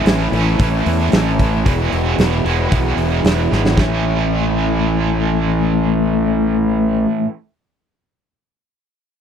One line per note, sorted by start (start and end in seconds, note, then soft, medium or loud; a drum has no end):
0.00 0.31 A2 medium
0.00 0.34 E3 medium
0.00 0.32 A3 medium
0.00 0.32 C#4 medium
0.00 0.32 E4 medium
0.05 0.31 A1 medium
0.05 0.60 E3 medium
0.05 0.33 A3 medium
0.05 0.33 C#4 medium
0.05 0.32 E4 medium
0.05 snare loud
0.05 open hi-hat medium
0.32 0.58 A1 medium
0.32 1.65 A2 medium
0.32 1.66 E3 medium
0.32 0.59 A3 medium
0.32 0.59 C#4 medium
0.32 0.60 E4 medium
0.32 open hi-hat soft
0.59 0.85 A1 medium
0.59 1.39 A2 medium
0.59 1.12 E3 medium
0.59 1.11 A3 medium
0.59 1.13 C#4 medium
0.59 1.14 E4 medium
0.59 kick loud
0.59 open hi-hat medium
0.86 1.12 E2 medium
0.86 open hi-hat medium
1.12 1.64 A1 medium
1.12 1.65 E3 medium
1.12 1.40 A3 medium
1.12 1.39 C#4 medium
1.12 1.38 E4 medium
1.12 snare loud
1.12 open hi-hat medium
1.39 1.65 A3 soft
1.39 1.64 C#4 medium
1.39 1.66 E4 medium
1.39 kick medium
1.39 open hi-hat soft
1.65 1.92 E1 medium
1.65 2.18 E2 medium
1.65 2.18 B2 medium
1.65 1.93 E3 medium
1.65 1.92 G#3 medium
1.65 1.92 B3 medium
1.65 1.90 E4 medium
1.65 kick loud
1.65 open hi-hat medium
1.92 2.18 E1 medium
1.92 2.18 E3 soft
1.92 2.18 G#3 medium
1.92 2.19 B3 medium
1.92 2.19 E4 medium
1.92 open hi-hat soft
2.19 2.44 E1 medium
2.19 2.46 E3 medium
2.19 2.44 G#3 medium
2.19 2.44 B3 medium
2.19 2.44 E4 medium
2.19 snare medium
2.19 open hi-hat medium
2.45 2.71 E1 medium
2.45 3.78 E2 medium
2.45 3.75 B2 medium
2.45 2.71 E3 soft
2.45 2.71 G#3 medium
2.45 2.71 B3 medium
2.45 2.71 E4 medium
2.45 open hi-hat soft
2.71 2.96 B1 medium
2.71 3.51 E2 medium
2.71 3.51 B2 medium
2.71 3.22 E3 medium
2.71 3.24 G#3 medium
2.71 3.24 B3 medium
2.71 3.24 E4 medium
2.71 kick medium
2.71 open hi-hat soft
2.97 3.23 E1 medium
2.97 open hi-hat soft
3.23 3.50 E1 medium
3.23 3.50 E3 medium
3.23 3.49 G#3 medium
3.23 3.49 B3 medium
3.23 3.48 E4 medium
3.23 snare medium
3.23 open hi-hat medium
3.50 3.77 G#1 medium
3.50 3.76 E3 soft
3.50 3.76 G#3 soft
3.50 3.76 B3 medium
3.50 3.75 E4 medium
3.50 snare medium
3.65 snare medium
3.75 7.05 A1 medium
3.75 7.25 A2 medium
3.75 7.27 E3 medium
3.75 7.27 A3 medium
3.75 7.29 C#4 medium
3.75 kick medium
3.75 snare medium
3.80 7.30 E4 medium